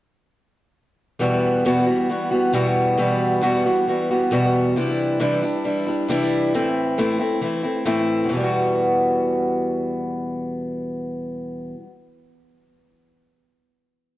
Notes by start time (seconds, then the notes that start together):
1.19 E2 B2 E3 G3 B3 F#4
1.65 E2 B2 E3 G3 B3 F#4
1.86 E3 G3 B3 F#4
2.09 E3 G3 B3 F#4
2.31 E3 G3 B3 F#4
2.53 E2 B2 E3 G3 B3 F#4
2.98 E2 B2 E3 G3 B3 F#4
3.41 E2 B2 E3 G3 B3 F#4
3.65 E3 G3 B3 F#4
3.87 E3 G3 B3 F#4
4.10 E3 G3 B3 F#4
4.31 E2 B2 E3 G3 B3 F#4
4.76 C3 E3 G3 D4 E4
5.20 C3 E3 G3 D4 E4
5.42 G3 D4 E4
5.64 E3 G3 D4 E4
5.87 G3 D4 E4
6.08 C3 E3 G3 D4 E4
6.54 A2 E3 A3 C4 E4
6.98 A2 E3 A3 C4 E4
7.19 A3 C4 E4
7.41 E3 A3 C4 E4
7.63 A3 C4 E4
7.85 A2 E3 A3 C4 E4
8.24 E2
8.29 B2 E3
8.37 G3 B3
8.44 F#4